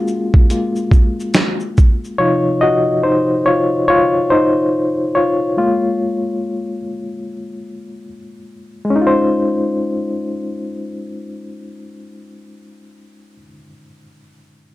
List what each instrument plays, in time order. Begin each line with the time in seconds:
Already playing: reed electric piano G#3 A#3 C#4 F4 F#4 G#4
0.07 shaker
0.34 kick
0.50 reed electric piano G#3 A#3 F4, closed hi-hat, shaker
0.76 shaker
0.91 kick, shaker
1.20 shaker
1.34 snare, closed hi-hat, shaker
1.60 shaker
1.77 kick, shaker
2.04 shaker
2.18 reed electric piano C3 F3 D#4 F4 C#5
2.61 reed electric piano F#4 D#5
3.03 reed electric piano D#4 C5
3.46 reed electric piano F4 C#5
3.88 reed electric piano F4 C#5
4.30 reed electric piano D#4 C5
5.15 reed electric piano F4 C#5
5.57 reed electric piano G#3 A#3 F4
8.85 reed electric piano G#3
8.90 reed electric piano C#4
8.96 reed electric piano D#4
9.01 reed electric piano F4
9.07 reed electric piano C5